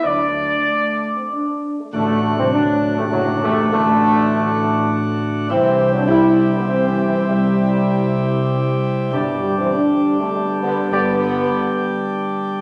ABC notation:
X:1
M:3/4
L:1/16
Q:1/4=100
K:Dmix
V:1 name="Trumpet section"
d8- d2 z2 | A,3 C D3 A, F,2 A,2 | A,8- A,2 z2 | [Ge]4 [Ge]4 [Ge]4 |
[Ge]8- [Ge]2 z2 | [Gd]2 z8 z2 | [Gd]2 z8 z2 |]
V:2 name="French horn section"
[F,D]2 z2 A,3 C D3 A, | A,3 C D3 A, F,2 A,2 | A,8- A,2 z2 | C3 D E3 B, (3C2 C2 C2 |
G,8- G,2 z2 | G,3 C D3 A, G,2 B,2 | B,8- B,2 z2 |]
V:3 name="Pipe organ"
z12 | [A,,D,DF]12- | [A,,D,DF]12 | [C,G,EG]12- |
[C,G,EG]12 | [D,G,DG]12- | [D,G,DG]12 |]
V:4 name="Trombone section" clef=bass
D8- D2 z2 | D,3 E, F,3 C, A,,2 C,2 | D,8- D,2 z2 | E,3 F, G,3 D, (3E,2 E,2 E,2 |
C,8- C,2 z2 | B,,3 E, G,3 C, B,,2 D,2 | D,8- D,2 z2 |]
V:5 name="Tuba" clef=bass
D,,4 z8 | A,,,3 C,, D,,3 A,,, F,,,2 A,,,2 | A,,,8- A,,,2 z2 | C,,12- |
C,,8- C,,2 z2 | G,,,4 z8 | G,,,4 z8 |]